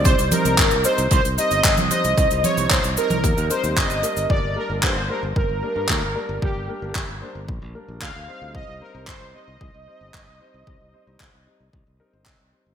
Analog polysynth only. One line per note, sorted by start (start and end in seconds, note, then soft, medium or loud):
0.05 0.30 C5 loud
0.32 0.86 A#4 loud
0.85 1.10 C5 loud
1.12 1.23 C5 loud
1.38 1.90 D#5 loud
1.91 2.46 D#5 loud
2.44 2.72 C#5 loud
2.71 2.83 C5 loud
2.98 3.47 A#4 loud
3.51 3.78 C5 medium
3.77 4.26 D#5 loud
4.30 4.57 D5 loud
4.57 4.84 A#4 medium
4.83 5.08 C5 medium
5.10 5.22 A#4 medium
5.36 6.38 A#4 loud
6.42 6.92 G4 medium
8.02 8.56 F5 loud
8.55 8.82 D#5 loud
8.81 9.09 A#4 medium
9.08 9.32 C5 medium
9.34 12.22 D#5 loud